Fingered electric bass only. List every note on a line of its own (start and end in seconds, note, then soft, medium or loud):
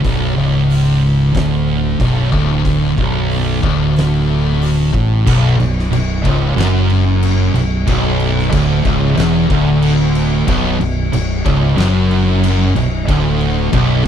0.04 0.35 B0 medium
0.37 1.31 C#1 medium
1.35 1.96 D1 loud
2.00 2.30 B0 loud
2.33 2.94 D1 medium
2.98 3.59 B0 medium
3.63 4.90 D1 medium
4.94 5.25 A1 medium
5.27 5.57 B0 loud
5.60 5.90 B0 medium
5.92 6.22 B0 medium
6.25 6.55 C#1 loud
6.57 7.51 F#1 loud
7.55 7.85 B0 medium
7.87 8.49 B0 loud
8.53 8.83 D1 loud
8.85 9.16 C#1 loud
9.17 9.48 E1 loud
9.50 10.44 D1 medium
10.48 10.78 B0 loud
10.80 11.11 B0 medium
11.13 11.43 B0 medium
11.46 11.76 C#1 loud
11.78 12.72 F#1 loud
12.75 13.06 B0 medium
13.08 13.69 D1 loud
13.73 14.03 B0 medium